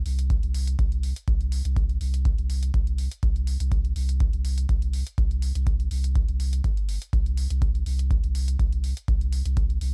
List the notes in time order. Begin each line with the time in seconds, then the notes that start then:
0.06 C2, open hi-hat
0.19 closed hi-hat
0.30 kick, closed hi-hat
0.43 C2, closed hi-hat
0.54 open hi-hat
0.67 closed hi-hat
0.79 C2, kick, closed hi-hat
0.92 closed hi-hat
1.03 open hi-hat
1.16 closed hi-hat
1.28 C2, kick, closed hi-hat
1.41 closed hi-hat
1.52 open hi-hat
1.65 C2, closed hi-hat
1.76 kick, closed hi-hat
1.89 closed hi-hat
2.01 C2, open hi-hat
2.14 closed hi-hat
2.25 kick, closed hi-hat
2.38 C2, closed hi-hat
2.50 open hi-hat
2.63 closed hi-hat
2.74 C2, kick, closed hi-hat
2.87 closed hi-hat
2.98 open hi-hat
3.11 closed hi-hat
3.23 C2, kick, closed hi-hat
3.36 closed hi-hat
3.47 open hi-hat
3.60 C2, closed hi-hat
3.72 kick, closed hi-hat
3.85 closed hi-hat
3.96 C2, open hi-hat
4.09 closed hi-hat
4.20 kick, closed hi-hat
4.33 C2, closed hi-hat
4.45 open hi-hat
4.58 closed hi-hat
4.69 C2, kick, closed hi-hat
4.82 closed hi-hat
4.93 open hi-hat
5.07 closed hi-hat
5.18 C2, kick, closed hi-hat
5.31 closed hi-hat
5.42 open hi-hat
5.55 C2, closed hi-hat
5.67 kick, closed hi-hat
5.80 closed hi-hat
5.91 C2, open hi-hat
6.04 closed hi-hat
6.15 kick, closed hi-hat
6.28 C2, closed hi-hat
6.40 open hi-hat
6.53 closed hi-hat
6.64 G1, kick, closed hi-hat
6.77 closed hi-hat
6.89 open hi-hat
7.02 closed hi-hat
7.13 C2, kick, closed hi-hat
7.26 closed hi-hat
7.37 open hi-hat
7.50 C2, closed hi-hat
7.62 kick, closed hi-hat
7.75 closed hi-hat
7.86 C2, open hi-hat
7.99 closed hi-hat
8.11 kick, closed hi-hat
8.24 C2, closed hi-hat
8.35 open hi-hat
8.48 closed hi-hat
8.59 C2, kick, closed hi-hat
8.72 closed hi-hat
8.84 open hi-hat
8.97 closed hi-hat
9.08 C2, kick, closed hi-hat
9.21 closed hi-hat
9.33 open hi-hat
9.45 C2, closed hi-hat
9.57 kick, closed hi-hat
9.70 closed hi-hat
9.81 C2, open hi-hat